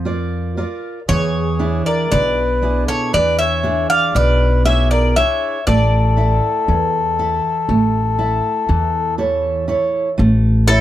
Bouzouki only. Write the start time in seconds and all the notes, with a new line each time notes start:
1.09 C#5
1.86 D5
2.12 D5
2.88 C#5
3.14 D5
3.39 E5
3.90 F5
4.16 D5
4.66 E5
4.91 D5
5.16 E5
5.67 D5
10.68 A4